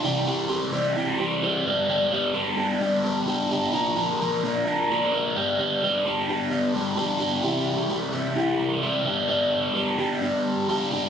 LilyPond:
\new Staff \with { instrumentName = "Overdriven electric guitar" } { \clef bass \time 4/4 \key c \major \tempo 4 = 130 <c e g c' g'>8 <c e g c' g'>8 <c e g c' g'>8 <c e g c' g'>8 <c e g c' g'>8 <c e g c' g'>8 <c e g c' g'>8 <g, d g b d' g'>8 | <g, d g b d' g'>8 <g, d g b d' g'>8 <g, d g b d' g'>8 <g, d g b d' g'>8 <g, d g b d' g'>8 <g, d g b d' g'>8 <g, d g b d' g'>8 <g, d g b d' g'>8 | <bes, d f bes d' bes'>8 <bes, d f bes d' bes'>8 <bes, d f bes d' bes'>8 <bes, d f bes d' bes'>8 <bes, d f bes d' bes'>8 <bes, d f bes d' bes'>8 <bes, d f bes d' bes'>8 <g, d g b d' g'>8 | <g, d g b d' g'>8 <g, d g b d' g'>8 <g, d g b d' g'>8 <g, d g b d' g'>8 <g, d g b d' g'>8 <g, d g b d' g'>8 <g, d g b d' g'>8 <g, d g b d' g'>8 |
<c e g e' g'>4 <c e g e' g'>8 <c e g e' g'>8 <c e g e' g'>4 <c e g e' g'>8 <g, d g b d' g'>8 | <g, d g b d' g'>4 <g, d g b d' g'>8 <g, d g b d' g'>8 <g, d g b d' g'>4 <g, d g b d' g'>8 <g, d g b d' g'>8 | }